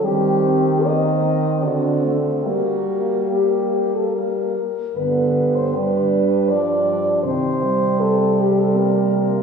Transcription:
<<
  \new Staff \with { instrumentName = "French horn" } { \time 3/4 \key g \minor \tempo 4 = 77 g'4 ees''4 fis'8. r16 | fis'4 g'8 g'16 a'16 bes'4 | b'8. c''16 b'4 d''4 | c''4 a'8 g'16 a'16 bes'4 | }
  \new Staff \with { instrumentName = "French horn" } { \time 3/4 \key g \minor c'4 c'4 c'4 | bes4 bes4. r8 | b4 d'2 | c'4 c'4 bes4 | }
  \new Staff \with { instrumentName = "French horn" } { \clef bass \time 3/4 \key g \minor g8 c'8 bes8 c'8 d'8 a8 | bes2~ bes8 r8 | d4 g4 f4 | ees8 g2~ g8 | }
  \new Staff \with { instrumentName = "French horn" } { \clef bass \time 3/4 \key g \minor ees2 d4 | g2~ g8 r8 | g,2. | c2. | }
>>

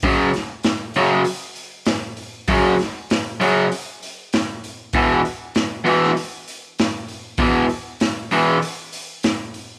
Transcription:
<<
  \new Staff \with { instrumentName = "Overdriven electric guitar" } { \clef bass \time 4/4 \key e \lydian \tempo 4 = 98 <fis, cis fis>8 r4 <fis, cis fis>8 r2 | <fis, cis fis>8 r4 <fis, cis fis>8 r2 | <e, b, e>8 r4 <e, b, e>8 r2 | <e, b, e>8 r4 <e, b, e>8 r2 | }
  \new DrumStaff \with { instrumentName = "Drums" } \drummode { \time 4/4 <hho bd>8 <hho sn>8 <hho sn>8 hho8 hho8 hho8 <hho sn>8 hho8 | <hho bd>8 <hho sn>8 <hho sn>8 hho8 hho8 hho8 <hho sn>8 hho8 | <hho bd>8 hho8 <hho sn>8 hho16 sn16 hho8 hho8 <hho sn>8 hho8 | <hho bd>8 hho8 <hho sn>8 hho8 hho8 hho8 <hho sn>8 hho8 | }
>>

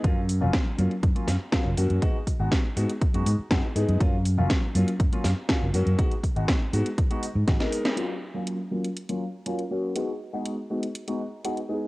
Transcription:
<<
  \new Staff \with { instrumentName = "Grand piano" } { \time 4/4 \key fis \major \tempo 4 = 121 <fis ais cis' eis'>16 r8 <fis ais cis' eis'>8 r16 <fis ais cis' eis'>16 r8 <fis ais cis' eis'>16 r8 <fis ais cis' eis'>16 r16 <fis ais cis' fis'>8 | <gis b dis' fis'>16 r8 <gis b dis' fis'>8 r16 <gis b dis' fis'>16 r8 <gis b dis' fis'>16 r8 <gis b dis' fis'>16 r16 <gis b dis' gis'>8 | <fis ais cis' eis'>16 r8 <fis ais cis' eis'>8 r16 <fis ais cis' eis'>16 r8 <fis ais cis' eis'>16 r8 <fis ais cis' eis'>16 r16 <fis ais cis' fis'>8 | <gis b dis' fis'>16 r8 <gis b dis' fis'>8 r16 <gis b dis' fis'>16 r8 <gis b dis' fis'>16 r8 <gis b dis' fis'>16 <gis b dis' ais'>8. |
<fis ais cis' eis'>16 r8 <fis ais cis' eis'>8 r16 <fis ais cis' eis'>16 r8 <fis ais cis' eis'>16 r8 <fis ais cis' eis'>16 r16 <fis ais cis' fis'>8 | <gis b dis' fis'>16 r8 <gis b dis' fis'>8 r16 <gis b dis' fis'>16 r8 <gis b dis' fis'>16 r8 <gis b dis' fis'>16 r16 <gis b dis' gis'>8 | }
  \new Staff \with { instrumentName = "Fingered electric bass" } { \clef bass \time 4/4 \key fis \major fis,8. fis,,16 r8 fis,16 r16 fis,16 r16 fis,16 r8 fis,,16 fis,16 fis,16 | r8. gis,,16 r8 gis,16 r8 fis,16 gis,16 r16 fis,16 r16 gis,16 fis,16 | fis,8. fis,,16 r8 fis,16 r16 fis,16 r16 fis,16 r8 fis,,16 fis,16 fis,16 | r8. gis,,16 r8 gis,16 r4 gis,16 gis,,16 r8. |
r1 | r1 | }
  \new DrumStaff \with { instrumentName = "Drums" } \drummode { \time 4/4 <hh bd>8 hho8 <hh bd sn>8 hho16 hh16 <hh bd>16 hh16 <hho sn>8 <hh bd sn>8 hho16 hh16 | <hh bd>8 <hho bd>8 <hho bd sn>8 hho16 hh16 <hh bd>16 hh16 hho8 <hh bd sn>8 hho16 hh16 | <hh bd>8 hho8 <hh bd sn>8 hho16 hh16 <hh bd>16 hh16 <hho sn>8 <hh bd sn>8 hho16 hh16 | <hh bd>16 hh16 <hho bd>16 hh16 <hho bd sn>8 hho16 hh16 <hh bd>16 hh16 hho8 <hh bd sn>16 <hh sn>16 hho16 <hh sn>16 |
hh4 hh8. hh16 hh16 hh8. hh16 hh8. | hh4 hh8. hh16 hh16 hh8. hh16 hh8. | }
>>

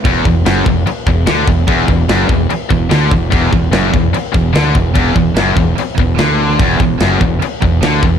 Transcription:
<<
  \new Staff \with { instrumentName = "Distorted electric guitar" } { \clef bass \time 4/4 \key d \mixolydian \tempo 4 = 146 e,8 e,8 fis,8 e,8 r8 e,8 d8 e,8 | e,8 e,8 fis,8 e,8 r8 e,8 d8 e,8 | e,8 e,8 fis,8 e,8 r8 e,8 d8 e,8 | e,8 e,8 fis,8 e,8 r8 e,8 d4 |
e,8 e,8 fis,8 e,8 r8 e,8 d8 e,8 | }
  \new Staff \with { instrumentName = "Distorted electric guitar" } { \clef bass \time 4/4 \key d \mixolydian e,8 e,8 fis,8 e,8 r8 e,8 d8 e,8 | e,8 e,8 fis,8 e,8 r8 e,8 d8 e,8 | e,8 e,8 fis,8 e,8 r8 e,8 d8 e,8 | e,8 e,8 fis,8 e,8 r8 e,8 d4 |
e,8 e,8 fis,8 e,8 r8 e,8 d8 e,8 | }
  \new Staff \with { instrumentName = "Distorted electric guitar" } { \clef bass \time 4/4 \key d \mixolydian e,8 e,8 fis,8 e,8 r8 e,8 d8 e,8 | e,8 e,8 fis,8 e,8 r8 e,8 d8 e,8 | e,8 e,8 fis,8 e,8 r8 e,8 d8 e,8 | e,8 e,8 fis,8 e,8 r8 e,8 d4 |
e,8 e,8 fis,8 e,8 r8 e,8 d8 e,8 | }
  \new Staff \with { instrumentName = "Fingered electric bass" } { \clef bass \time 4/4 \key d \mixolydian e,,8 e,,8 fis,,8 e,,8 r8 e,,8 d,8 e,,8 | e,,8 e,,8 fis,,8 e,,8 r8 e,,8 d,8 e,,8 | e,,8 e,,8 fis,,8 e,,8 r8 e,,8 d,8 e,,8 | e,,8 e,,8 fis,,8 e,,8 r8 e,,8 d,4 |
e,,8 e,,8 fis,,8 e,,8 r8 e,,8 d,8 e,,8 | }
  \new DrumStaff \with { instrumentName = "Drums" } \drummode { \time 4/4 <cymc bd>8 bd8 <cymc sn>8 bd8 cymc8 bd8 <cymc sn>8 bd8 | <cymc bd>8 bd8 <cymc sn>8 bd8 cymc8 bd8 <cymc sn>8 bd8 | <cymc bd>8 bd8 <cymc sn>8 bd8 cymc8 bd8 <cymc sn>8 bd8 | <cymc bd>8 bd8 <cymc sn>8 bd8 cymc8 bd8 <cymc sn>4 |
<cymc bd>8 bd8 <cymc sn>8 bd8 cymc8 bd8 <cymc sn>8 bd8 | }
>>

